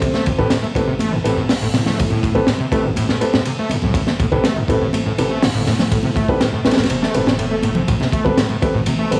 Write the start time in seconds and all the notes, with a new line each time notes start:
Already playing: C4 G4 A4 C5
0.02 A1 C3, kick, ride
0.14 A3, snare, high conga
0.26 G2, kick, ride
0.38 A2 C4 G4 A4 B4, kick
0.50 A2, snare, ride
0.63 A3, high conga
0.75 A1 A2 C4 G4 A4 B4, kick, ride
0.87 A1 C3
0.99 A3, ride, high conga
1.12 G2
1.24 A1 A2 C4 G4 A4 B4, ride
1.37 A2, high conga
1.49 A3, snare, open hi-hat
1.61 G1 A2
1.74 A2 C3, snare, ride, high conga
1.86 A3, snare, low conga
1.98 G2, kick, ride
2.10 A2, high conga
2.23 A2, kick, ride
2.35 A3 C4 G4 A4 B4, kick
2.47 A2, snare, ride
2.59 C3, high conga
2.72 A1 A3 C4 G4 A4 B4, kick, ride
2.84 A1 G2
2.96 A2, ride, high conga
3.09 A2, snare
3.21 A3 C4 G4 A4 B4, ride
3.33 A2, snare, high conga
3.45 C3, ride
3.59 A3
3.70 G2, ride, high conga
3.82 C2 A2, low conga
3.94 A1 A2, kick, ride
4.07 A3, snare, high conga
4.20 A2, kick, ride
4.32 C3 C4 G4 A4 B4, kick
4.44 A3, snare, ride
4.56 G2, high conga
4.68 A1 A2 C4 G4 A4 B4, kick, ride
4.81 A1 A2
4.93 A3, ride, high conga
5.06 A2
5.18 A1 C3 C4 G4 A4 B4, ride
5.30 A3, high conga
5.42 G2, snare, open hi-hat
5.54 G1 A2
5.67 A2, snare, ride, high conga
5.79 A3, snare, low conga
5.92 A2, kick, ride
6.03 C3, high conga
6.16 A3, kick, ride
6.29 G2 C4 G4 A4 B4, kick
6.41 A2, snare, ride
6.53 A2, high conga
6.65 A1 A3 C4 G4 A4 B4, snare, ride
6.71 snare, ride
6.77 A1 A2, snare, ride
6.83 snare, ride
6.89 E1 C3, ride, swell, high conga
7.02 A3, snare
7.14 E1 G2 C4 G4 A4 B4, ride
7.27 A2, snare, high conga
7.39 A2, ride
7.51 A3
7.63 A2, ride, high conga
7.75 C3, low conga
7.88 A1 A2, kick, ride
8.00 C3, snare, high conga
8.12 A3, kick, ride
8.24 G2 C4 G4 A4 B4, kick
8.37 A2, snare, ride
8.49 A2, high conga
8.62 A1 A3 C4 G4 A4 B4, kick, ride
8.74 A1 A2
8.86 C3, ride, high conga
8.99 A3
9.11 A1 G2 C4 G4 A4 B4, ride